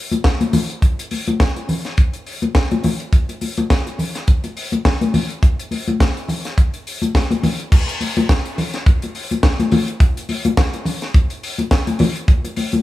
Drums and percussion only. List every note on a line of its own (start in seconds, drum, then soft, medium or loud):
0.12 closed hi-hat soft
0.12 high conga medium
0.24 kick loud
0.24 snare loud
0.24 closed hi-hat medium
0.24 muted conga soft
0.41 closed hi-hat soft
0.41 high conga medium
0.53 open hi-hat medium
0.53 high conga medium
0.53 low conga medium
0.70 closed hi-hat soft
0.82 kick loud
0.82 closed hi-hat medium
0.99 closed hi-hat medium
1.11 open hi-hat medium
1.11 high conga soft
1.27 closed hi-hat soft
1.27 high conga medium
1.40 kick loud
1.40 snare loud
1.40 closed hi-hat medium
1.40 muted conga soft
1.56 closed hi-hat soft
1.56 muted conga soft
1.69 open hi-hat medium
1.69 low conga medium
1.85 snare soft
1.85 closed hi-hat medium
1.98 kick loud
1.98 closed hi-hat medium
2.14 closed hi-hat soft
2.27 open hi-hat medium
2.42 closed hi-hat soft
2.42 high conga medium
2.55 kick loud
2.55 snare loud
2.55 closed hi-hat medium
2.71 closed hi-hat soft
2.71 muted conga soft
2.71 high conga medium
2.84 open hi-hat medium
2.84 high conga medium
2.84 low conga medium
3.00 closed hi-hat soft
3.13 kick loud
3.13 closed hi-hat medium
3.29 closed hi-hat medium
3.29 muted conga soft
3.41 open hi-hat medium
3.41 high conga medium
3.57 closed hi-hat soft
3.57 high conga medium
3.70 kick loud
3.70 snare medium
3.70 closed hi-hat medium
3.70 muted conga soft
3.86 closed hi-hat soft
3.86 muted conga soft
3.99 open hi-hat medium
3.99 low conga medium
4.15 snare soft
4.15 closed hi-hat medium
4.27 kick loud
4.27 closed hi-hat medium
4.27 muted conga soft
4.44 closed hi-hat soft
4.44 muted conga soft
4.57 open hi-hat medium
4.72 closed hi-hat soft
4.72 high conga medium
4.85 kick loud
4.85 snare loud
4.85 closed hi-hat soft
5.01 closed hi-hat soft
5.01 muted conga soft
5.01 high conga medium
5.14 open hi-hat medium
5.14 high conga medium
5.14 low conga medium
5.30 closed hi-hat soft
5.43 kick loud
5.43 closed hi-hat medium
5.43 muted conga soft
5.60 closed hi-hat medium
5.71 open hi-hat medium
5.71 high conga medium
5.88 closed hi-hat soft
5.88 high conga medium
6.00 kick loud
6.00 snare loud
6.00 closed hi-hat medium
6.17 closed hi-hat soft
6.29 open hi-hat medium
6.29 low conga medium
6.45 snare soft
6.45 closed hi-hat soft
6.58 kick medium
6.58 closed hi-hat medium
6.74 closed hi-hat soft
6.87 open hi-hat medium
7.02 closed hi-hat soft
7.02 high conga medium
7.15 kick loud
7.15 snare loud
7.15 closed hi-hat soft
7.15 muted conga soft
7.31 closed hi-hat soft
7.31 high conga medium
7.43 open hi-hat medium
7.43 high conga medium
7.43 low conga medium
7.60 closed hi-hat soft
7.72 kick loud
7.72 crash loud
7.72 muted conga soft
7.89 closed hi-hat medium
8.01 open hi-hat medium
8.01 high conga medium
8.17 closed hi-hat soft
8.17 high conga medium
8.29 kick loud
8.29 snare loud
8.29 closed hi-hat medium
8.45 closed hi-hat medium
8.58 open hi-hat medium
8.58 low conga medium
8.74 snare soft
8.74 closed hi-hat medium
8.86 kick loud
8.86 closed hi-hat medium
8.86 muted conga soft
9.02 closed hi-hat medium
9.02 muted conga soft
9.15 open hi-hat medium
9.31 closed hi-hat soft
9.31 high conga medium
9.43 kick loud
9.43 snare loud
9.43 closed hi-hat medium
9.60 closed hi-hat medium
9.60 high conga medium
9.71 open hi-hat medium
9.71 high conga loud
9.71 low conga medium
9.88 closed hi-hat soft
10.00 kick loud
10.00 closed hi-hat medium
10.17 closed hi-hat medium
10.29 open hi-hat medium
10.29 high conga medium
10.45 closed hi-hat soft
10.45 high conga medium
10.57 kick loud
10.57 snare loud
10.57 closed hi-hat medium
10.57 muted conga soft
10.74 closed hi-hat soft
10.74 muted conga soft
10.85 open hi-hat medium
10.85 low conga medium
11.02 snare soft
11.02 closed hi-hat medium
11.14 kick loud
11.14 closed hi-hat medium
11.14 muted conga soft
11.30 closed hi-hat soft
11.43 open hi-hat medium
11.58 closed hi-hat medium
11.58 high conga medium
11.71 kick loud
11.71 snare loud
11.71 closed hi-hat medium
11.87 closed hi-hat medium
11.87 muted conga soft
11.87 high conga medium
11.99 open hi-hat medium
11.99 high conga medium
11.99 low conga medium
12.16 closed hi-hat soft
12.28 kick loud
12.28 closed hi-hat medium
12.28 muted conga soft
12.44 closed hi-hat medium
12.44 muted conga soft
12.56 open hi-hat medium
12.56 high conga medium
12.72 closed hi-hat soft
12.72 high conga medium